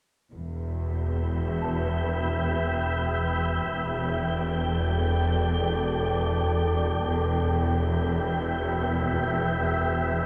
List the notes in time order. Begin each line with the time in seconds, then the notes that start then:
0.32 E1 E2 B4 E5 G5
1.62 A5
3.73 E1 E2 A4 D5 G5
7.06 E1 E2 B4 E5 G5